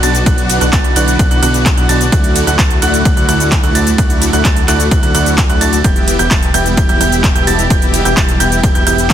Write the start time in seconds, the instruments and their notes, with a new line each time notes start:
Already playing: string section B2 D3 F#3 D4 F#4
0.03 analog synth bass B1, supersaw synth B3 D4 F#4 D5 A5, grand piano A6, open hi-hat, ride, shaker
0.15 closed hi-hat, shaker
0.26 analog synth bass B1, supersaw synth B3 D4 F#4 D5 F#5, string section E4, grand piano F#6, kick, closed hi-hat, ride, shaker
0.38 closed hi-hat
0.49 open hi-hat, ride, shaker
0.61 analog synth bass B1, supersaw synth B3 D4 F#4 D5 F#5, grand piano F#6, closed hi-hat, shaker
0.73 analog synth bass B1, supersaw synth B3, grand piano A6, kick, clap, closed hi-hat, ride, shaker
0.84 closed hi-hat
0.96 analog synth bass B1, supersaw synth B3 D4 F#4 D5 F#5, grand piano F#6, open hi-hat, ride, shaker
1.08 closed hi-hat, shaker
1.19 analog synth bass B1, supersaw synth B3 D4 F#4 F#5, grand piano F#6, kick, closed hi-hat, ride, shaker
1.31 analog synth bass B1, supersaw synth B3 D4 F#4 D5 F#5, grand piano F#6, closed hi-hat
1.43 analog synth bass B1, supersaw synth B3 D4 F#4 D5 F#5, grand piano F#6, open hi-hat, ride, shaker
1.54 closed hi-hat, shaker
1.66 kick, clap, closed hi-hat, ride, shaker
1.77 analog synth bass B1, supersaw synth B3 D4 F#4 D5 F#5, grand piano F#6, closed hi-hat
1.89 analog synth bass B1, supersaw synth B3 D4 F#4 D5 A5, grand piano A6, open hi-hat, ride, shaker
2.01 closed hi-hat, shaker
2.12 analog synth bass D2, string section A3 E4, supersaw synth A3 E4 F#4 D5 F#5, grand piano F#6, kick, closed hi-hat, ride, shaker
2.24 closed hi-hat
2.36 open hi-hat, ride, shaker
2.47 analog synth bass D2, supersaw synth A3 E4 F#4 D5 F#5, grand piano F#6, closed hi-hat, shaker
2.59 analog synth bass D2, kick, clap, closed hi-hat, ride, shaker
2.70 closed hi-hat
2.82 analog synth bass D2, supersaw synth A3 E4 F#4 D5 F#5, grand piano F#6, open hi-hat, ride, shaker
2.94 closed hi-hat, shaker
3.05 analog synth bass D2, grand piano F#6, kick, closed hi-hat, ride, shaker
3.17 analog synth bass D2, supersaw synth A3 E4 F#4 D5 F#5, grand piano F#6, closed hi-hat
3.29 analog synth bass D2, supersaw synth A3 E4 F#4 D5 F#5, grand piano F#6, open hi-hat, ride, shaker
3.40 closed hi-hat, shaker
3.52 kick, clap, closed hi-hat, ride, shaker
3.63 analog synth bass D2, supersaw synth A3 E4 F#4 D5 F#5, grand piano F#6, closed hi-hat
3.75 analog synth bass D2, supersaw synth A3 E4 F#4 D5 A5, grand piano A6, open hi-hat, ride, shaker
3.87 closed hi-hat, shaker
3.98 analog synth bass D2, supersaw synth A3 E4 F#4 D5 F#5, grand piano F#6, kick, closed hi-hat, ride, shaker
4.10 closed hi-hat
4.22 open hi-hat, ride, shaker
4.33 analog synth bass D2, supersaw synth A3 E4 F#4 D5 F#5, grand piano F#6, closed hi-hat, shaker
4.45 analog synth bass D2, kick, clap, closed hi-hat, ride, shaker
4.56 closed hi-hat
4.68 analog synth bass D2, supersaw synth A3 E4 F#4 D5 F#5, grand piano F#6, clap, open hi-hat, ride, shaker
4.80 closed hi-hat, shaker
4.91 analog synth bass D2, supersaw synth A3 E4 F#4 D5 F#5, grand piano F#6, kick, closed hi-hat, ride, shaker
5.03 analog synth bass D2, supersaw synth A3 E4 F#4 D5 F#5, grand piano F#6, closed hi-hat
5.15 analog synth bass D2, supersaw synth A3 E4 F#4 D5 F#5, grand piano F#6, open hi-hat, ride, shaker
5.26 closed hi-hat, shaker
5.38 kick, clap, closed hi-hat, ride, shaker
5.49 analog synth bass D2, supersaw synth A3 E4 F#4 D5 F#5, grand piano F#6, closed hi-hat
5.61 analog synth bass D2, supersaw synth A3 E4 F#4 D5 A5, grand piano A6, open hi-hat, ride, shaker
5.73 closed hi-hat, shaker
5.84 analog synth bass E1, string section B2 E3 G3 E4 G4, supersaw synth B3 E4 G4 G5, grand piano G6, kick, closed hi-hat, ride, shaker
5.96 closed hi-hat
6.08 open hi-hat, ride, shaker
6.19 analog synth bass E1, supersaw synth B3 E4 G4 E5 G5, grand piano G6, closed hi-hat, shaker
6.31 analog synth bass E1, supersaw synth B3 E4 E5, kick, clap, closed hi-hat, ride, shaker
6.43 closed hi-hat
6.54 analog synth bass E1, supersaw synth B3 E4 G4 E5 G5, grand piano G6, open hi-hat, ride, shaker
6.66 closed hi-hat, shaker
6.77 analog synth bass E1, supersaw synth B3 G4 G5, grand piano G6, kick, closed hi-hat, ride, shaker
6.89 analog synth bass E1, supersaw synth B3 E4 G4 E5 G5, grand piano G6, closed hi-hat
7.01 analog synth bass E1, supersaw synth B3 E4 G4 E5 G5, grand piano G6, open hi-hat, ride, shaker
7.12 closed hi-hat, shaker
7.24 kick, clap, closed hi-hat, ride, shaker
7.36 analog synth bass E1, supersaw synth B3 E4 G4 E5 G5, grand piano G6, closed hi-hat
7.47 analog synth bass E1, supersaw synth B3 E4 G4 E5 A5, grand piano A6, open hi-hat, ride, shaker
7.59 closed hi-hat, shaker
7.70 analog synth bass E1, supersaw synth B3, grand piano G6, kick, closed hi-hat, ride, shaker
7.82 closed hi-hat
7.94 open hi-hat, ride, shaker
8.05 analog synth bass E1, supersaw synth B3 E4 G4 E5 G5, grand piano G6, closed hi-hat, shaker
8.17 analog synth bass E1, kick, clap, closed hi-hat, ride, shaker
8.29 closed hi-hat
8.40 analog synth bass E1, supersaw synth B3 E4 G4 E5 G5, grand piano G6, open hi-hat, ride, shaker
8.52 closed hi-hat, shaker
8.63 analog synth bass E1, supersaw synth B3 E4 G4, grand piano G6, kick, closed hi-hat, ride, shaker
8.75 analog synth bass E1, supersaw synth B3 E4 G4 E5 G5, grand piano G6, closed hi-hat
8.87 analog synth bass E1, supersaw synth B3 E4 G4 E5 G5, grand piano G6, open hi-hat, ride, shaker
8.98 closed hi-hat, shaker
9.10 kick, clap, closed hi-hat, ride